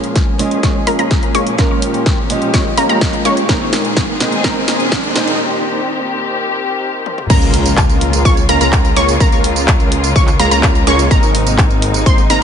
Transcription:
Already playing: A#2 F3 G#3 A#3 C#4 F4 G#4 A#4 A#5, riser
0.04 closed hi-hat
0.16 kick, snare, closed hi-hat
0.38 G#3 C#4 F4 D#5, open hi-hat
0.51 closed hi-hat
0.63 G#3 A#3 C#4 F4 C#5 C#6, kick, snare, closed hi-hat
0.87 G#3 A#3 C#4 F4 A#4 A#5, open hi-hat
0.99 G#3 A#3 C#4 F4 A#4 A#5, closed hi-hat
1.11 kick, snare, closed hi-hat
1.23 closed hi-hat
1.35 G#3 A#3 C#4 F4 C#5 C#6, open hi-hat
1.47 closed hi-hat
1.57 G#3 A#3 C#4 F4 G4 A#4 A#5, kick, snare, closed hi-hat
1.82 open hi-hat
1.94 closed hi-hat
2.06 kick, snare, closed hi-hat
2.29 G#3 C#4 F4 D#5, open hi-hat
2.42 closed hi-hat
2.54 G#3 A#3 C#4 F4 C#5 C#6, kick, snare, closed hi-hat
2.77 G#3 A#3 C#4 F4 A#4 A#5, open hi-hat
2.89 G#3 A#3 C#4 F4 A#4 A#5, closed hi-hat
3.01 kick, snare, closed hi-hat
3.13 closed hi-hat
3.25 G#3 A#3 C#4 F4 C#5 C#6, open hi-hat
3.37 closed hi-hat
3.48 A#2 D#3 G#3 A#3 C4 D#4 G#4 A#4 A#5, kick, snare, closed hi-hat
3.73 snare, open hi-hat
3.85 closed hi-hat
3.97 kick, snare, closed hi-hat
4.19 G#3 C4 D#4 D#5, snare, open hi-hat
4.32 closed hi-hat
4.43 G#3 A#3 C4 D#4 A#4 A#5, kick, snare, closed hi-hat
4.68 snare, open hi-hat
4.80 closed hi-hat
4.92 kick, snare, closed hi-hat
5.04 closed hi-hat
5.15 G#3 C4 D#4 D#5, snare, open hi-hat
5.28 closed hi-hat
5.39 G4
7.06 high tom
7.18 mid tom
7.30 C#2 C#3 G#3 A#3 C#4 F4 A#4 A#5, kick, closed hi-hat, crash, tambourine, impact
7.42 closed hi-hat, tambourine
7.54 open hi-hat
7.66 closed hi-hat, tambourine
7.77 kick, clap, closed hi-hat, tambourine
7.89 closed hi-hat, tambourine
8.01 open hi-hat
8.13 closed hi-hat, tambourine
8.25 C#2 G#3 A#3 C#4 F4 C#5 C#6, kick, closed hi-hat, tambourine
8.37 closed hi-hat, tambourine
8.49 C#2 G#3 A#3 C#4 F4 A#4 A#5, open hi-hat
8.61 C#2 G#3 A#3 C#4 F4 A#4 A#5, closed hi-hat, tambourine
8.73 kick, clap, closed hi-hat, tambourine
8.85 closed hi-hat, tambourine
8.96 C#2 G#3 A#3 C#4 F4 C#5 C#6, open hi-hat
9.08 closed hi-hat, tambourine
9.20 C#2 G#3 A#3 C#4 F4 A#4 A#5, kick, closed hi-hat, tambourine
9.32 closed hi-hat, tambourine
9.44 open hi-hat
9.56 closed hi-hat, tambourine
9.68 kick, clap, closed hi-hat, tambourine
9.80 closed hi-hat, tambourine
9.92 open hi-hat
10.04 closed hi-hat, tambourine
10.16 C#2 G#3 A#3 C#4 F4 C#5 C#6, kick, closed hi-hat, tambourine
10.27 clap, closed hi-hat, tambourine
10.39 C#2 G#3 A#3 C#4 F4 A#4 A#5, open hi-hat
10.51 C#2 G#3 A#3 C#4 F4 A#4 A#5, closed hi-hat, tambourine
10.63 kick, clap, closed hi-hat, tambourine
10.75 closed hi-hat, tambourine
10.87 C#2 G#3 A#3 C#4 F4 C#5 C#6, open hi-hat
10.99 closed hi-hat, tambourine
11.11 G#1 C3 G#3 A#3 C4 D#4 A#4 A#5, kick, closed hi-hat, tambourine
11.23 closed hi-hat, tambourine
11.35 open hi-hat
11.47 closed hi-hat, tambourine
11.58 kick, clap, closed hi-hat, tambourine
11.70 closed hi-hat, tambourine
11.82 open hi-hat
11.94 closed hi-hat, tambourine
12.06 G#1 G#3 A#3 C4 D#4 C5 C6, kick, closed hi-hat, tambourine
12.18 closed hi-hat, tambourine
12.30 G#1 G#3 A#3 C4 D#4 A#4 A#5, open hi-hat

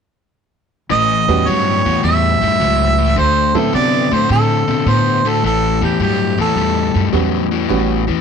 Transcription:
0.90 A1 A2 E3 D#5
1.28 E2 A2 E3 G3 B3 C#4 F#4
1.46 G2 A2 F#3 C#5
1.85 E2 A2 E3
2.03 E2 A2 G3 E5
2.41 F#2 A2 G3
2.60 C#2 A2 F#3
2.98 A2 E3
3.16 D2 D3 A3 C5
3.55 A2 D3 F#3 A3 B3 C4 E4 A4
3.73 C3 D3 B3 D5
4.11 A2 D3 A3 C5
4.29 A2 D3 C4 A4
4.68 B2 D3 C4
4.86 A2 D3 B3 C5
5.25 D3 A3 A4
5.43 A1 A2 E3 A4
5.81 E2 A2 E3 G4
5.99 G2 A2 F#3 G4
6.37 E2 A2 E3 A4
6.56 E2 A2 G3
6.94 F#2 A2 G3
7.12 E2 A2 F#3 G3 B3 C#4 F#4
7.51 A2 E3
7.69 A1 A2 E3 G3 B3 C#4 F#4
8.07 E2 A2 E3

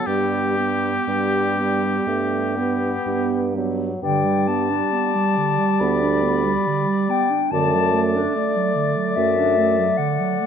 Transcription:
0.06 G2 G3 B3 G4
0.58 G3 B3
1.07 G2 G3
1.58 B3
2.07 G2 A3
2.57 B3
3.06 G2
3.56 F#3 B3
4.03 G2 D3 G3 D5 G5
4.25 G3
4.47 B3 A5
4.70 D4
4.92 B3
5.15 G3
5.37 D3
5.59 G3
5.80 D2 B3 B5
6.03 D4
6.23 B3
6.45 G3
6.66 D3
6.87 G3
7.09 B3 G5
7.30 D4
7.51 F#2 D3 A3 D5 A5
7.74 F#3
7.94 A3
8.16 D4
8.33 A3 D5
8.56 F#3
8.75 D3
8.97 F#3
9.15 F#2 A3 E5
9.37 D4
9.58 A3
9.79 F#3
9.97 D3 F#5
10.20 F#3
10.40 A3

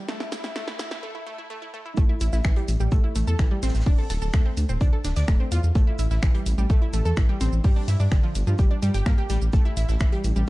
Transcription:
0.08 A3, snare, shaker
0.20 E4, snare
0.32 E4, snare, open hi-hat, shaker
0.44 E4, snare, shaker
0.56 A3, snare, shaker
0.68 E4, snare
0.79 E4, snare, open hi-hat, shaker
0.91 E4, snare, shaker
1.03 A3
1.15 E4
1.27 A3
1.38 E4
1.50 A3
1.62 E4
1.74 A3
1.86 E4
1.97 A1 A3 A4, kick, shaker
2.09 E4 E5
2.20 A1 E4 E5, open hi-hat, shaker
2.33 A1 E4 E5, snare, shaker
2.44 A1 E3 E4, finger snap, kick, snare, shaker
2.56 G3 G4, closed hi-hat
2.68 A1, open hi-hat, shaker
2.80 A1 G3 G4, shaker
2.92 A1 A3 A4, kick, shaker
3.04 E4 E5
3.16 A1 A3 A4, open hi-hat, shaker
3.27 E2 A4 A5, shaker
3.39 A1 E3 E4, finger snap, kick, snare, shaker
3.51 G3 G4
3.63 A1 C4 C5, snare, open hi-hat, shaker
3.68 snare, shaker
3.74 A1, snare, shaker
3.80 snare, shaker
3.86 D1 D4 D5, kick, open hi-hat, shaker
3.98 A4 A5
4.10 D1 A4 A5, snare, open hi-hat, shaker
4.22 D1 A4 A5, shaker
4.33 D2 A3 A4, finger snap, kick, snare, shaker
4.46 C4 C5
4.57 D2, open hi-hat, shaker
4.69 D1 C4 C5, shaker
4.81 D2 D4 D5, kick, shaker
4.93 A4 A5
5.04 D1 D4 D5, snare, open hi-hat, shaker
5.16 D2 D5 D6, snare, open hi-hat, shaker
5.28 D1 A3 A4, finger snap, kick, snare, shaker
5.40 C4 C5
5.52 E2 F4 F5, open hi-hat, shaker
5.64 E2, shaker
5.75 A1 A3 A4, kick, shaker
5.87 E4 E5
5.98 A1 E4 E5, open hi-hat, shaker
6.11 A1 E4 E5, snare, shaker
6.23 A1 E3 E4, finger snap, kick, snare, shaker
6.34 G3 G4, closed hi-hat
6.46 A1, open hi-hat, shaker
6.58 A1 G3 G4, shaker
6.70 A1 A3 A4, kick, shaker
6.82 E4 E5
6.93 A1 A3 A4, open hi-hat, shaker
7.05 E2 A4 A5, shaker
7.17 A1 E3 E4, finger snap, kick, snare, shaker
7.29 G3 G4
7.40 A1 C4 C5, open hi-hat, shaker
7.53 A1, shaker
7.64 G2 G3 G4, kick, open hi-hat, shaker
7.76 D4 D5
7.88 G2 E4 E5, snare, open hi-hat, shaker
8.00 G2 D4 D5, shaker
8.12 G1 D3 D4, finger snap, kick, snare, shaker
8.23 F3 F4
8.35 G1, open hi-hat, shaker
8.47 G2 F3 F4, shaker
8.59 G1 G3 G4, kick, shaker
8.71 D4 D5
8.82 G2 G3 G4, open hi-hat, shaker
8.94 G1 G4 G5, closed hi-hat, open hi-hat, shaker
9.06 G2 A#3 A#4, finger snap, kick, snare, shaker
9.18 G4 G5
9.29 A1 G3 G4, open hi-hat, shaker
9.42 A1, shaker
9.53 A1 A3 A4, kick, shaker
9.65 E4 E5
9.77 A1 E4 E5, open hi-hat, shaker
9.89 A1 E4 E5, snare, shaker
10.00 A1 E3 E4, finger snap, kick, snare, shaker
10.12 G3 G4, closed hi-hat
10.24 A1, open hi-hat, shaker
10.36 A1 G3 G4, shaker

